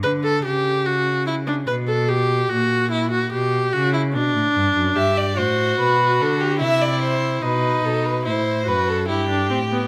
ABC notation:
X:1
M:3/4
L:1/16
Q:1/4=73
K:Bphr
V:1 name="Violin"
z12 | z12 | e d c2 B2 A G e d c2 | B2 A B c2 B A G4 |]
V:2 name="Viola"
B A G2 F2 E D B A G2 | F2 E F G2 F E D4 | G2 F6 E4 | ^D4 E2 F2 E =D C B, |]
V:3 name="Cello" clef=bass
D,2 ^C,6 B,,4 | ^A,,4 B,,2 ^C,2 B,, =A,, G,, F,, | G,,2 A,,2 B,,2 D,2 C,4 | B,,2 B,,2 A,,2 F,,2 G,,2 A,,2 |]